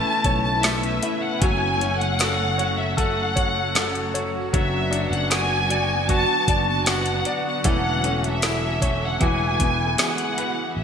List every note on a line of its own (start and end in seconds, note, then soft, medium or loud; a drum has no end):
0.00 4.49 C#3 medium
0.00 0.64 A3 medium
0.00 4.50 A3 medium
0.00 1.39 B3 medium
0.00 0.64 C#4 medium
0.00 0.64 E4 medium
0.00 1.03 E4 medium
0.00 1.38 E4 medium
0.00 0.64 B4 medium
0.00 0.24 C#5 medium
0.00 0.42 A5 loud
0.24 0.99 B1 medium
0.24 1.38 C#5 medium
0.24 kick medium
0.24 closed hi-hat medium
0.43 0.62 A5 medium
0.63 1.39 A3 medium
0.63 1.03 A3 medium
0.63 1.03 C#4 medium
0.63 1.03 E4 medium
0.63 1.02 B4 medium
0.63 1.22 E5 medium
0.63 snare loud
0.63 closed hi-hat medium
0.63 tambourine medium
0.83 closed hi-hat soft
1.03 1.42 C#4 soft
1.03 1.41 E4 medium
1.03 1.42 E4 soft
1.03 1.42 B4 soft
1.03 closed hi-hat medium
1.21 1.41 F#5 medium
1.41 4.49 F#1 medium
1.41 1.81 F#2 medium
1.41 1.81 C#3 medium
1.41 4.50 F#3 medium
1.41 7.62 F#3 medium
1.41 1.81 F#3 medium
1.41 1.81 A3 medium
1.41 1.81 C#4 medium
1.41 7.62 F#4 medium
1.41 1.80 F#4 medium
1.41 2.00 G#5 loud
1.41 kick loud
1.41 closed hi-hat loud
1.80 2.20 F#3 soft
1.80 2.20 A3 soft
1.80 3.32 C#4 medium
1.80 2.20 C#4 medium
1.80 2.20 F#4 medium
1.80 closed hi-hat medium
1.98 2.77 F#5 medium
1.98 closed hi-hat soft
2.19 2.59 F#2 medium
2.19 2.59 C#3 medium
2.19 2.59 F#3 medium
2.19 2.58 A3 medium
2.19 2.58 C#4 medium
2.19 2.57 F#4 medium
2.19 2.96 A4 medium
2.19 snare loud
2.19 closed hi-hat medium
2.19 tambourine medium
2.58 2.96 F#3 soft
2.58 2.96 A3 soft
2.58 2.97 C#4 soft
2.58 2.97 F#4 medium
2.58 3.34 C#5 medium
2.58 closed hi-hat medium
2.77 2.97 E5 medium
2.97 3.75 F#3 medium
2.97 3.74 A3 medium
2.97 3.74 C#4 medium
2.97 3.76 F#4 medium
2.97 3.74 A4 medium
2.97 4.10 F#5 medium
2.97 kick medium
2.97 closed hi-hat medium
3.36 4.13 C#5 medium
3.36 kick medium
3.36 closed hi-hat medium
3.74 4.14 F#2 medium
3.74 4.14 C#3 medium
3.74 4.14 F#3 medium
3.74 4.14 A3 medium
3.74 4.13 C#4 medium
3.74 4.13 F#4 medium
3.74 4.51 A4 medium
3.74 snare loud
3.74 closed hi-hat medium
3.74 tambourine medium
3.95 closed hi-hat medium
4.14 4.51 F#3 medium
4.14 4.53 A3 medium
4.14 4.53 C#4 medium
4.14 4.53 F#4 medium
4.14 4.52 C#5 medium
4.14 closed hi-hat medium
4.53 5.08 F#1 medium
4.53 7.62 D3 medium
4.53 4.92 F#3 medium
4.53 7.61 F#3 medium
4.53 4.92 B3 medium
4.53 7.62 B3 medium
4.53 4.92 D4 medium
4.53 4.91 F#4 medium
4.53 5.09 E5 medium
4.53 kick loud
4.53 closed hi-hat loud
4.91 5.29 B3 soft
4.91 6.43 D4 medium
4.91 5.30 D4 soft
4.91 5.30 F#4 medium
4.91 closed hi-hat medium
5.11 6.24 F#1 loud
5.11 5.32 F#5 medium
5.11 closed hi-hat soft
5.30 5.70 F#3 medium
5.30 5.70 B3 medium
5.30 5.69 D4 medium
5.30 6.08 F#4 medium
5.30 5.68 F#4 medium
5.30 6.06 G#5 loud
5.30 snare loud
5.30 closed hi-hat medium
5.30 tambourine medium
5.69 6.08 B3 soft
5.69 6.08 D4 soft
5.69 6.09 F#4 medium
5.69 6.47 D5 medium
5.69 closed hi-hat medium
6.08 6.85 F#3 medium
6.08 6.85 B3 medium
6.08 6.86 D4 medium
6.08 6.86 F#4 medium
6.08 6.69 A5 loud
6.08 kick medium
6.08 closed hi-hat medium
6.48 7.22 F#1 medium
6.48 7.25 D5 medium
6.48 kick medium
6.48 closed hi-hat medium
6.70 6.87 A5 loud
6.86 7.26 F#3 medium
6.86 7.26 B3 medium
6.86 7.25 D4 medium
6.86 7.63 F#4 medium
6.86 7.24 F#4 medium
6.86 7.47 F#5 medium
6.86 snare loud
6.86 closed hi-hat medium
6.86 tambourine medium
7.06 closed hi-hat medium
7.25 7.64 B3 soft
7.25 7.64 D4 soft
7.25 7.65 F#4 medium
7.25 7.64 D5 medium
7.25 closed hi-hat medium
7.48 7.65 F#5 medium
7.64 9.17 E1 loud
7.64 8.03 E3 medium
7.64 9.17 E3 medium
7.64 8.04 A3 medium
7.64 8.03 C#4 medium
7.64 8.02 A4 medium
7.64 kick loud
7.64 closed hi-hat loud
7.68 8.21 F#5 medium
8.03 8.42 A3 soft
8.03 8.42 C#4 soft
8.03 9.18 C#4 medium
8.03 8.43 A4 medium
8.03 closed hi-hat medium
8.24 9.03 E5 medium
8.24 closed hi-hat soft
8.42 8.82 E3 medium
8.42 8.82 A3 medium
8.42 8.81 C#4 medium
8.42 9.19 E4 medium
8.42 8.80 A4 medium
8.42 snare loud
8.42 closed hi-hat medium
8.42 tambourine medium
8.81 9.20 A3 soft
8.81 9.20 C#4 medium
8.81 9.21 A4 medium
8.81 9.20 C#5 medium
8.81 kick medium
8.81 closed hi-hat medium
9.05 9.23 F#5 medium
9.20 9.95 E1 medium
9.20 10.73 E3 medium
9.20 9.98 G#3 medium
9.20 9.98 B3 medium
9.20 9.99 E4 medium
9.20 9.99 F#4 medium
9.20 10.39 G#5 medium
9.20 kick medium
9.20 closed hi-hat medium
9.60 10.73 B3 medium
9.60 kick medium
9.60 closed hi-hat medium
9.98 10.37 E3 medium
9.98 10.38 G#3 medium
9.98 10.38 B3 medium
9.98 10.37 E4 medium
9.98 10.36 F#4 medium
9.98 10.74 G#4 medium
9.98 10.74 F#5 medium
9.98 snare loud
9.98 closed hi-hat medium
9.98 tambourine medium
10.18 closed hi-hat soft
10.37 10.77 B3 soft
10.37 10.77 E4 soft
10.37 10.77 F#4 medium
10.37 10.76 B4 medium
10.37 closed hi-hat medium
10.77 10.84 A1 medium
10.77 10.84 E5 medium